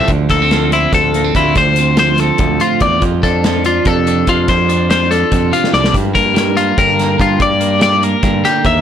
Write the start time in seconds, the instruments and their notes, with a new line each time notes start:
Already playing: clean electric guitar F2 F3 E5
0.08 picked electric bass D2, clean electric guitar D3, kick, closed hi-hat
0.29 picked electric bass D2, clean electric guitar A#3 A4, kick, snare, closed hi-hat
0.42 clean electric guitar C4
0.51 clean electric guitar F3, snare, closed hi-hat
0.72 clean electric guitar C4 E4, closed hi-hat
0.93 picked electric bass D2, clean electric guitar A2 A4, kick, closed hi-hat
1.14 clean electric guitar A#3, closed hi-hat
1.24 clean electric guitar C4
1.35 picked electric bass D2, clean electric guitar E4 F4, kick, closed hi-hat
1.56 picked electric bass D2, clean electric guitar D3 C5, kick, closed hi-hat
1.76 clean electric guitar C4, closed hi-hat
1.97 clean electric guitar F3 C5, snare, closed hi-hat
2.18 clean electric guitar C4 A4, snare, closed hi-hat
2.38 picked electric bass D2, clean electric guitar A2, kick, closed hi-hat
2.60 clean electric guitar C4 F4, closed hi-hat
2.80 picked electric bass E2, clean electric guitar F4 D5, kick, closed hi-hat
3.00 clean electric guitar F2, picked electric bass F2, kick, closed hi-hat
3.23 picked electric bass F2, clean electric guitar D4 A4, kick, closed hi-hat
3.44 clean electric guitar F3, snare, closed hi-hat
3.64 clean electric guitar D4 F4, closed hi-hat
3.85 picked electric bass F2, clean electric guitar C3 A4, kick, closed hi-hat
4.07 clean electric guitar D4, closed hi-hat
4.27 picked electric bass F2, clean electric guitar F4 A4, kick, closed hi-hat
4.48 clean electric guitar F2 C5, picked electric bass F2, kick, closed hi-hat
4.69 clean electric guitar D4, closed hi-hat
4.90 clean electric guitar F3 C5, snare, closed hi-hat
5.11 clean electric guitar D4 A4, snare, closed hi-hat
5.31 picked electric bass F2, clean electric guitar C3, kick, closed hi-hat
5.51 clean electric guitar D4 F4, closed hi-hat
5.64 snare
5.73 picked electric bass C2, clean electric guitar A4 D5, snare
5.84 snare
5.92 clean electric guitar G2, picked electric bass G2, kick, closed hi-hat
6.14 picked electric bass G2, clean electric guitar A#3 A#4, kick, closed hi-hat
6.34 clean electric guitar G3, snare, closed hi-hat
6.57 clean electric guitar A#3 F4, closed hi-hat
6.78 picked electric bass G2, clean electric guitar D3 A#4, kick, closed hi-hat
6.99 clean electric guitar A#3, snare, closed hi-hat
7.18 picked electric bass G2, clean electric guitar F4 A#4, kick, closed hi-hat
7.38 clean electric guitar G2 D5, picked electric bass G2, kick, closed hi-hat
7.60 clean electric guitar A#3, closed hi-hat
7.79 clean electric guitar G3 D5, snare, closed hi-hat
8.03 clean electric guitar A#3 A#4, closed hi-hat
8.23 picked electric bass G2, clean electric guitar D3, kick, snare, closed hi-hat
8.44 clean electric guitar A#3 G4, snare, closed hi-hat
8.65 picked electric bass D#2, clean electric guitar A#4 E5, kick, closed hi-hat